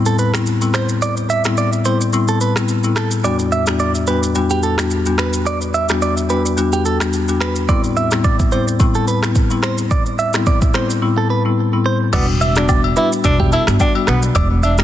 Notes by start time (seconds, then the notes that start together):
0.06 A4, shaker
0.19 B4, shaker
0.34 A2 G3 B3 C4 E4, finger snap, cross-stick, shaker
0.46 shaker
0.61 A2 G3 B3 C4 E4, shaker
0.74 C5, finger snap, cross-stick, shaker
0.89 shaker
1.02 D5, shaker
1.17 shaker
1.30 E5, shaker
1.44 A2 G3 B3 C4 E4, finger snap, cross-stick, shaker
1.57 D5, shaker
1.73 shaker
1.85 A2 G3 B3 C4 E4 C5, shaker
2.01 shaker
2.13 A2 G3 B3 C4 E4, shaker
2.28 A4, shaker
2.41 B4, shaker
2.56 A2 G3 B3 C4 E4, finger snap, cross-stick, shaker
2.68 shaker
2.84 A2 G3 B3 C4 E4, shaker
2.96 A4, finger snap, cross-stick, shaker
3.11 shaker
3.24 E2 G3 B3 D4 F#4 D5, shaker
3.39 shaker
3.52 E5, shaker
3.67 E2 G3 B3 D4 F#4, finger snap, cross-stick, shaker
3.79 D5, shaker
3.95 shaker
4.07 E2 G3 B3 D4 F#4 B4, shaker
4.23 shaker
4.35 E2 G3 B3 D4 F#4, shaker
4.50 G4, shaker
4.63 A4, shaker
4.78 E2 G3 B3 D4 F#4, finger snap, cross-stick, shaker
4.91 shaker
5.06 E2 G3 B3 D4 F#4, shaker
5.18 B4, finger snap, cross-stick, shaker
5.33 shaker
5.46 D5, shaker
5.61 shaker
5.74 E5, shaker
5.89 E2 G3 B3 D4 F#4, finger snap, cross-stick, shaker
6.02 D5, shaker
6.17 shaker
6.29 E2 G3 B3 D4 F#4 B4, shaker
6.46 shaker
6.57 E2 G3 B3 D4 F#4, shaker
6.73 G4, shaker
6.85 A4, shaker
7.00 E2 G3 B3 D4 F#4, finger snap, cross-stick, shaker
7.13 shaker
7.28 E2 G3 B3 D4 F#4, shaker
7.41 B4, finger snap, cross-stick, shaker
7.56 shaker
7.69 A2 G3 B3 C4 E4 D5, kick, shaker
7.84 shaker
7.97 E5, shaker
8.11 A2 G3 B3 C4 E4, finger snap, cross-stick, shaker
8.24 D5, kick, shaker
8.39 kick, shaker
8.52 A2 G3 B3 C4 E4 C5, shaker
8.68 shaker
8.80 A2 G3 B3 C4 E4, kick, shaker
8.95 A4, shaker
9.08 B4, shaker
9.23 A2 G3 B3 C4 E4, finger snap, cross-stick, shaker
9.35 kick, shaker
9.50 A2 G3 B3 C4 E4, shaker
9.63 C5, finger snap, cross-stick, shaker
9.78 shaker
9.91 D5, kick, shaker
10.06 shaker
10.19 E5, shaker
10.33 A2 G3 B3 C4 E4, finger snap, cross-stick, shaker
10.46 D5, kick, shaker
10.62 kick, shaker
10.74 A2 G3 B3 C4 E4 C5, finger snap, cross-stick, shaker
10.90 shaker
11.02 A2 G3 B3 C4 E4
11.18 A4
11.30 B4
11.45 A2 G3 B3 C4 E4
11.73 A2 G3 B3 C4 E4
11.86 C5
12.13 E1 G3 B3 D4 F#4 D5, kick, crash, high agogo, shaker
12.41 E5, high agogo, shaker
12.56 G3 B3 D4 F#4, finger snap, cross-stick, shaker
12.69 D5, kick, low woodblock, shaker
12.84 high agogo
12.96 G3 B3 D4 E4 F#4 B4, shaker
13.12 shaker
13.24 E1 G3 B3 D4 F#4, kick, high agogo, shaker
13.40 G4, kick
13.52 E4 A4, high agogo, shaker
13.67 G1 G3 B3 D4 F#4, finger snap, cross-stick, shaker
13.80 D4, kick, low woodblock, shaker
13.95 G3 B3 D4 F#4, high agogo
14.07 B1 B3 B4, finger snap, cross-stick, shaker
14.22 shaker
14.35 E1 D5, kick, high agogo, shaker
14.63 D4 E5, high agogo, shaker
14.78 G3 B3 D4 F#4, finger snap, cross-stick, shaker